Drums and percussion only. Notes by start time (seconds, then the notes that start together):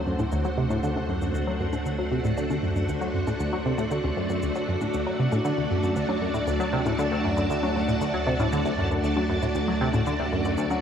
0.19 low bongo, shaker
0.32 shaker
0.45 shaker
0.70 shaker
0.83 shaker
0.96 low bongo
1.22 shaker
1.35 shaker
1.73 low bongo, shaker
1.86 shaker
2.24 shaker
2.37 shaker
2.50 low bongo, shaker
2.76 shaker
2.89 shaker
3.02 shaker
3.27 low bongo, shaker
3.40 shaker
3.78 shaker
3.91 shaker
4.04 low bongo
4.30 shaker
4.42 shaker
4.55 shaker
4.81 low bongo, shaker
4.94 shaker
5.32 low bongo, shaker
5.45 shaker
5.83 shaker
5.96 shaker
6.09 low bongo
6.35 shaker
6.47 shaker
6.60 shaker
6.86 low bongo, shaker
6.99 shaker
7.37 shaker
7.50 shaker
7.63 low bongo
7.88 shaker
8.01 shaker
8.40 low bongo, shaker
8.52 shaker
8.65 shaker
8.91 shaker
9.04 shaker
9.17 low bongo
9.42 shaker
9.55 shaker
9.93 low bongo, shaker
10.06 shaker
10.45 shaker
10.58 shaker
10.70 low bongo, shaker